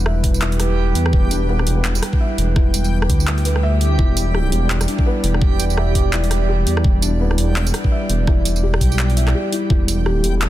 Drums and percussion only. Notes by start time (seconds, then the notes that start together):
0.06 cross-stick
0.24 kick, closed hi-hat
0.34 tambourine
0.42 clap
0.52 closed hi-hat
0.60 cross-stick, closed hi-hat
0.95 closed hi-hat
1.06 cross-stick
1.13 kick
1.31 closed hi-hat, tambourine
1.59 cross-stick
1.67 closed hi-hat
1.85 clap
1.95 closed hi-hat, tambourine
2.03 cross-stick, closed hi-hat
2.13 kick
2.38 closed hi-hat
2.56 kick, cross-stick
2.74 closed hi-hat, tambourine
2.84 tambourine
3.02 cross-stick
3.10 kick, closed hi-hat
3.20 tambourine
3.27 clap
3.38 closed hi-hat
3.45 closed hi-hat
3.56 cross-stick
3.81 closed hi-hat
3.99 kick
4.17 closed hi-hat, tambourine
4.35 cross-stick
4.52 closed hi-hat
4.70 clap
4.81 cross-stick, closed hi-hat, tambourine
4.88 closed hi-hat
4.99 kick
5.24 closed hi-hat
5.34 cross-stick
5.42 kick
5.60 closed hi-hat, tambourine
5.70 tambourine
5.77 cross-stick
5.95 kick, closed hi-hat
6.13 clap
6.24 closed hi-hat
6.31 cross-stick, closed hi-hat
6.67 closed hi-hat
6.77 cross-stick
6.84 kick
7.02 closed hi-hat, tambourine
7.31 cross-stick
7.38 closed hi-hat
7.56 clap
7.67 closed hi-hat, tambourine
7.74 cross-stick, closed hi-hat
7.84 kick
8.10 closed hi-hat
8.27 kick, cross-stick
8.45 closed hi-hat, tambourine
8.56 tambourine
8.74 cross-stick
8.81 kick, closed hi-hat
8.92 tambourine
8.99 clap
9.10 closed hi-hat
9.17 closed hi-hat
9.28 cross-stick, clap
9.53 closed hi-hat
9.70 kick
9.88 closed hi-hat, tambourine
10.06 cross-stick
10.24 closed hi-hat
10.42 clap